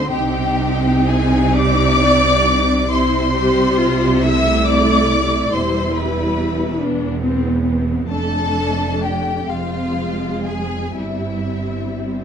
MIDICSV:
0, 0, Header, 1, 6, 480
1, 0, Start_track
1, 0, Key_signature, 0, "major"
1, 0, Tempo, 950872
1, 57, Time_signature, 6, 3, 24, 8
1, 1020, Tempo, 894188
1, 1500, Tempo, 864553
1, 4380, Tempo, 940439
1, 5340, Tempo, 985222
1, 6442, End_track
2, 0, Start_track
2, 0, Title_t, "Violin section"
2, 0, Program_c, 0, 48
2, 55, Note_on_c, 0, 79, 90
2, 535, Note_off_c, 0, 79, 0
2, 544, Note_on_c, 0, 80, 91
2, 786, Note_on_c, 0, 86, 122
2, 791, Note_off_c, 0, 80, 0
2, 1483, Note_off_c, 0, 86, 0
2, 1499, Note_on_c, 0, 84, 96
2, 2217, Note_on_c, 0, 88, 106
2, 2224, Note_off_c, 0, 84, 0
2, 2460, Note_off_c, 0, 88, 0
2, 2461, Note_on_c, 0, 86, 107
2, 2946, Note_on_c, 0, 84, 83
2, 2950, Note_off_c, 0, 86, 0
2, 3183, Note_off_c, 0, 84, 0
2, 3191, Note_on_c, 0, 83, 72
2, 3658, Note_off_c, 0, 83, 0
2, 4374, Note_on_c, 0, 81, 88
2, 4833, Note_off_c, 0, 81, 0
2, 4850, Note_on_c, 0, 79, 77
2, 5093, Note_on_c, 0, 77, 66
2, 5095, Note_off_c, 0, 79, 0
2, 5570, Note_on_c, 0, 80, 58
2, 5573, Note_off_c, 0, 77, 0
2, 5809, Note_off_c, 0, 80, 0
2, 5809, Note_on_c, 0, 76, 49
2, 6442, Note_off_c, 0, 76, 0
2, 6442, End_track
3, 0, Start_track
3, 0, Title_t, "Violin section"
3, 0, Program_c, 1, 48
3, 0, Note_on_c, 1, 72, 77
3, 51, Note_on_c, 1, 67, 80
3, 55, Note_off_c, 1, 72, 0
3, 533, Note_off_c, 1, 67, 0
3, 540, Note_on_c, 1, 68, 79
3, 784, Note_on_c, 1, 74, 105
3, 789, Note_off_c, 1, 68, 0
3, 1496, Note_off_c, 1, 74, 0
3, 1502, Note_on_c, 1, 72, 82
3, 2212, Note_off_c, 1, 72, 0
3, 2218, Note_on_c, 1, 76, 91
3, 2460, Note_off_c, 1, 76, 0
3, 2471, Note_on_c, 1, 74, 90
3, 2945, Note_off_c, 1, 74, 0
3, 2953, Note_on_c, 1, 72, 75
3, 3185, Note_on_c, 1, 71, 67
3, 3192, Note_off_c, 1, 72, 0
3, 3646, Note_off_c, 1, 71, 0
3, 4384, Note_on_c, 1, 69, 74
3, 4838, Note_off_c, 1, 69, 0
3, 4854, Note_on_c, 1, 67, 55
3, 5092, Note_off_c, 1, 67, 0
3, 5093, Note_on_c, 1, 65, 58
3, 5573, Note_off_c, 1, 65, 0
3, 5585, Note_on_c, 1, 68, 55
3, 5822, Note_off_c, 1, 68, 0
3, 5823, Note_on_c, 1, 64, 46
3, 6442, Note_off_c, 1, 64, 0
3, 6442, End_track
4, 0, Start_track
4, 0, Title_t, "Viola section"
4, 0, Program_c, 2, 48
4, 53, Note_on_c, 2, 63, 77
4, 55, Note_on_c, 2, 60, 73
4, 1477, Note_off_c, 2, 63, 0
4, 1478, Note_off_c, 2, 60, 0
4, 1495, Note_on_c, 2, 64, 70
4, 1497, Note_on_c, 2, 55, 74
4, 1727, Note_off_c, 2, 64, 0
4, 1747, Note_on_c, 2, 67, 82
4, 1984, Note_on_c, 2, 65, 82
4, 1988, Note_off_c, 2, 67, 0
4, 2201, Note_off_c, 2, 55, 0
4, 2220, Note_on_c, 2, 64, 74
4, 2221, Note_on_c, 2, 57, 74
4, 2223, Note_off_c, 2, 65, 0
4, 2946, Note_off_c, 2, 64, 0
4, 2949, Note_off_c, 2, 57, 0
4, 2949, Note_on_c, 2, 55, 68
4, 2953, Note_on_c, 2, 64, 67
4, 3643, Note_off_c, 2, 55, 0
4, 3645, Note_off_c, 2, 64, 0
4, 3658, Note_on_c, 2, 59, 67
4, 3660, Note_on_c, 2, 62, 69
4, 3889, Note_on_c, 2, 60, 70
4, 3893, Note_off_c, 2, 62, 0
4, 4121, Note_off_c, 2, 60, 0
4, 4128, Note_on_c, 2, 60, 58
4, 4366, Note_off_c, 2, 59, 0
4, 4373, Note_off_c, 2, 60, 0
4, 4381, Note_on_c, 2, 57, 58
4, 4381, Note_on_c, 2, 62, 56
4, 5097, Note_on_c, 2, 56, 55
4, 5099, Note_off_c, 2, 57, 0
4, 5099, Note_off_c, 2, 62, 0
4, 5099, Note_on_c, 2, 60, 49
4, 5803, Note_off_c, 2, 60, 0
4, 5816, Note_off_c, 2, 56, 0
4, 5818, Note_on_c, 2, 55, 42
4, 5820, Note_on_c, 2, 60, 45
4, 6442, Note_off_c, 2, 55, 0
4, 6442, Note_off_c, 2, 60, 0
4, 6442, End_track
5, 0, Start_track
5, 0, Title_t, "Cello section"
5, 0, Program_c, 3, 48
5, 0, Note_on_c, 3, 50, 70
5, 58, Note_off_c, 3, 50, 0
5, 60, Note_on_c, 3, 48, 88
5, 1492, Note_off_c, 3, 48, 0
5, 1499, Note_on_c, 3, 48, 85
5, 2929, Note_off_c, 3, 48, 0
5, 2951, Note_on_c, 3, 40, 74
5, 4357, Note_off_c, 3, 40, 0
5, 4379, Note_on_c, 3, 41, 63
5, 5090, Note_off_c, 3, 41, 0
5, 5096, Note_on_c, 3, 41, 52
5, 5802, Note_off_c, 3, 41, 0
5, 5815, Note_on_c, 3, 43, 48
5, 6442, Note_off_c, 3, 43, 0
5, 6442, End_track
6, 0, Start_track
6, 0, Title_t, "Double bass section"
6, 0, Program_c, 4, 48
6, 0, Note_on_c, 4, 38, 76
6, 57, Note_off_c, 4, 38, 0
6, 59, Note_on_c, 4, 36, 83
6, 1498, Note_off_c, 4, 36, 0
6, 1505, Note_on_c, 4, 36, 75
6, 2932, Note_off_c, 4, 36, 0
6, 2950, Note_on_c, 4, 28, 65
6, 4357, Note_off_c, 4, 28, 0
6, 4376, Note_on_c, 4, 29, 57
6, 5090, Note_off_c, 4, 29, 0
6, 5096, Note_on_c, 4, 29, 54
6, 5802, Note_off_c, 4, 29, 0
6, 5818, Note_on_c, 4, 31, 45
6, 6442, Note_off_c, 4, 31, 0
6, 6442, End_track
0, 0, End_of_file